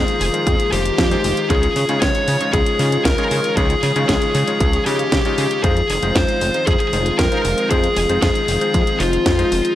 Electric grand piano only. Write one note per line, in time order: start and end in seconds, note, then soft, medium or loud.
0.00 0.31 G#3 medium
0.00 0.31 D#4 medium
0.00 0.31 F4 medium
0.00 0.31 C5 loud
0.34 0.69 G#3 medium
0.34 0.69 D#4 medium
0.34 0.69 F4 medium
0.34 0.69 C5 medium
0.73 1.08 G#3 medium
0.73 1.08 D#4 medium
0.73 1.08 F4 medium
0.73 1.08 C5 medium
1.11 1.47 G#3 medium
1.11 1.47 D#4 medium
1.11 1.47 F4 medium
1.11 1.47 C5 loud
1.50 1.65 C#3 medium
1.50 1.65 G#3 medium
1.50 1.65 D#4 medium
1.50 1.65 F4 medium
1.50 1.65 C#5 loud
1.89 2.38 C#3 medium
1.89 2.38 G#3 medium
1.89 2.38 D#4 medium
1.89 2.38 F4 medium
1.89 2.38 C#5 loud
2.41 2.76 C#3 medium
2.41 2.76 G#3 medium
2.41 2.76 D#4 medium
2.41 2.76 F4 medium
2.41 2.76 C#5 medium
2.80 3.15 C#3 medium
2.80 3.15 G#3 medium
2.80 3.15 D#4 medium
2.80 3.15 F4 medium
2.80 3.15 C#5 medium
3.18 3.54 C#3 medium
3.18 3.54 G#3 medium
3.18 3.54 D#4 medium
3.18 3.54 F4 medium
3.18 3.54 C#5 loud
3.57 3.72 C#3 medium
3.57 3.72 G#3 medium
3.57 3.72 D#4 medium
3.57 3.72 F4 medium
3.57 3.72 C#5 loud
3.96 4.44 C#3 medium
3.96 4.44 G#3 medium
3.96 4.44 D#4 medium
3.96 4.44 F4 medium
3.96 4.44 C#5 medium
4.48 4.83 C#3 medium
4.48 4.83 G#3 medium
4.48 4.83 D#4 medium
4.48 4.83 F4 medium
4.48 4.83 C#5 medium
4.86 5.22 C#3 medium
4.86 5.22 G#3 medium
4.86 5.22 D#4 medium
4.86 5.22 F4 medium
4.86 5.22 C#5 medium
5.25 5.61 C#3 medium
5.25 5.61 G#3 medium
5.25 5.61 D#4 medium
5.25 5.61 F4 medium
5.25 5.61 C#5 medium
5.64 5.79 G#3 medium
5.64 5.79 D#4 medium
5.64 5.79 F4 medium
5.64 5.79 C5 loud
6.03 6.51 G#3 medium
6.03 6.51 D#4 medium
6.03 6.51 F4 medium
6.03 6.51 C5 loud
6.54 6.90 G#3 medium
6.54 6.90 D#4 medium
6.54 6.90 F4 medium
6.54 6.90 C5 medium
6.93 7.29 G#3 medium
6.93 7.29 D#4 medium
6.93 7.29 F4 medium
6.93 7.29 C5 medium
7.32 7.68 G#3 medium
7.32 7.68 D#4 medium
7.32 7.68 F4 medium
7.32 7.68 C5 loud
7.71 7.86 G#3 medium
7.71 7.86 D#4 medium
7.71 7.86 F4 medium
7.71 7.86 C5 loud
8.10 8.58 G#3 medium
8.10 8.58 D#4 medium
8.10 8.58 F4 medium
8.10 8.58 C5 loud
8.61 8.97 G#3 medium
8.61 8.97 D#4 medium
8.61 8.97 F4 medium
8.61 8.97 C5 medium
9.00 9.36 G#3 medium
9.00 9.36 D#4 medium
9.00 9.36 F4 medium
9.00 9.36 C5 medium
9.39 9.75 G#3 medium
9.39 9.75 D#4 medium
9.39 9.75 F4 medium
9.39 9.75 C5 loud